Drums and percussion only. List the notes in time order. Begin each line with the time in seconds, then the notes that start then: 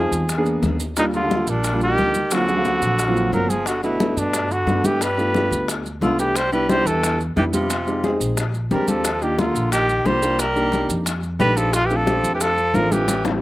0.12 high bongo, maracas
0.29 high bongo, high conga, maracas
0.46 high conga, maracas
0.63 high bongo, low bongo, high conga, maracas
0.80 high bongo, maracas
0.96 high bongo, high conga, maracas
1.14 high bongo, high conga, maracas
1.31 high bongo, high conga, maracas
1.47 high bongo, high conga, maracas
1.64 high bongo, high conga, maracas
1.81 high conga, maracas
1.98 high bongo, low bongo, high conga, maracas
2.14 high bongo, high conga, maracas
2.31 high bongo, high conga, maracas
2.48 high bongo, high conga, maracas
2.65 high bongo, high conga, maracas
2.82 high bongo, maracas
2.99 high bongo, high conga, maracas
3.17 high conga, maracas
3.33 high bongo, low bongo, high conga, maracas
3.50 high bongo, high conga, maracas
3.66 high bongo, high conga, maracas
3.83 high bongo, high conga, maracas
4.00 high bongo, high conga, maracas
4.17 high bongo, high conga, maracas
4.33 high bongo, high conga, maracas
4.51 high conga, maracas
4.67 high bongo, low bongo, high conga, maracas
4.84 high bongo, high conga, maracas
5.01 high bongo, high conga, maracas
5.18 high bongo, high conga, maracas
5.34 high bongo, high conga, maracas
5.51 high bongo, maracas
5.68 high bongo, high conga, maracas
5.86 high conga, maracas
6.02 high bongo, low bongo, high conga, maracas
6.19 high bongo, maracas
6.36 high bongo, high conga, maracas
6.52 high bongo, high conga, maracas
6.69 high bongo, high conga, maracas
6.86 high bongo, high conga, maracas
7.03 high bongo, high conga, maracas
7.20 high conga, maracas
7.37 high bongo, low bongo, high conga, maracas
7.53 high bongo, high conga, maracas
7.70 high bongo, high conga, maracas
7.87 high bongo, high conga, maracas
8.04 high bongo, high conga, maracas
8.21 high bongo, maracas
8.37 high bongo, high conga, maracas
8.54 high conga, maracas
8.71 high bongo, low bongo, high conga, maracas
8.88 high bongo, high conga, maracas
9.04 high bongo, high conga, maracas
9.22 high bongo, high conga, maracas
9.38 high bongo, high conga, maracas
9.55 high bongo, high conga, maracas
9.72 high bongo, high conga, maracas
9.89 high conga, maracas
10.05 high bongo, low bongo, high conga, maracas
10.22 high bongo, maracas
10.39 high bongo, high conga, maracas
10.56 high bongo, high conga, maracas
10.72 high bongo, high conga, maracas
10.89 high bongo, maracas
11.06 high bongo, high conga, maracas
11.23 high conga, maracas
11.40 high bongo, low bongo, high conga, maracas
11.57 high bongo, maracas
11.73 high bongo, high conga, maracas
11.90 high bongo, high conga, maracas
12.07 high bongo, high conga, maracas
12.24 high bongo, high conga, maracas
12.40 high bongo, high conga, maracas
12.58 high conga, maracas
12.74 high bongo, low bongo, high conga, maracas
12.91 high bongo, high conga, maracas
13.08 high bongo, high conga, maracas
13.25 high bongo, high conga, maracas